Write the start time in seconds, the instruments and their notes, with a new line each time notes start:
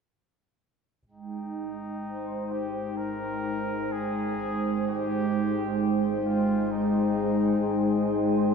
1.06 double bass section G#1, analog synth pad G#3, glass harmonica G5
1.12 flugelhorn D#4
1.19 analog synth pad D#4
2.01 analog synth pad C5
2.47 analog synth pad G5
2.52 flugelhorn G4
2.97 flugelhorn A#4
3.92 flugelhorn G#4
4.88 flugelhorn G4
6.26 flugelhorn F4
6.71 flugelhorn D#4